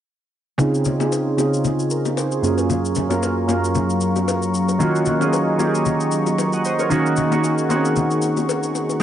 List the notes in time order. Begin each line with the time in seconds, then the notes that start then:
0.58 C#3 C4 D#4 F4 G#4 F5 C6 C#6, low conga, shaker
0.75 shaker
0.85 low bongo, low conga, shaker
0.99 C#3 C4 D#4 F4 G#4, low bongo, shaker
1.12 high bongo, shaker
1.37 C#3 C4 D#4 F4 G#4, low bongo, shaker
1.54 shaker
1.65 low conga, shaker
1.79 F4 G#4, shaker
1.90 A#4, shaker
2.05 low bongo, shaker
2.17 G#4 C5, high bongo, shaker
2.32 F4 G#4, shaker
2.42 F#2 F#3 A#3 C#4 F4 G#4 F5 A#5, shaker
2.58 high bongo, shaker
2.70 low conga, shaker
2.85 shaker
2.95 low bongo, low conga, shaker
3.09 F#2 A#3 C#4 F4 A#4, low bongo, shaker
3.23 high bongo, shaker
3.47 F#2 A#3 C#4 F4 A#4, low bongo, shaker
3.64 shaker
3.75 low conga, shaker
3.90 shaker
4.01 shaker
4.16 low bongo, shaker
4.28 high bongo, shaker
4.42 shaker
4.54 shaker
4.69 high bongo, shaker
4.79 D#3 A#3 C#4 F4 F#4 D#5, low conga, shaker
4.95 shaker
5.06 low bongo, low conga, shaker
5.19 D#3 A#3 C#4 F4 G#4, low bongo, shaker
5.33 high bongo, shaker
5.58 D#3 A#3 C#4 F4 G4, low bongo, shaker
5.67 G#4
5.75 shaker
5.85 low conga, shaker
6.00 shaker
6.12 shaker
6.26 low bongo, shaker
6.38 high bongo, shaker
6.53 D#5 F#5, shaker
6.65 C5 D#5, shaker
6.79 A#4 C#5, high bongo, shaker
6.90 D#3 A#3 C#4 D#4 F#4 G#4 F#5, low conga, shaker
7.06 shaker
7.17 low bongo, low conga, shaker
7.30 D#3 A#3 C#4 D#4 F#4, low bongo, shaker
7.44 high bongo, shaker
7.58 shaker
7.69 D#3 A#3 C4 D#4 F#4, low bongo, shaker
7.76 C#4
7.85 shaker
7.96 low conga, shaker
8.11 shaker
8.22 shaker
8.37 low bongo, shaker
8.49 high bongo, shaker
8.63 shaker
8.75 high bongo, shaker
8.90 high bongo, shaker
9.00 G#3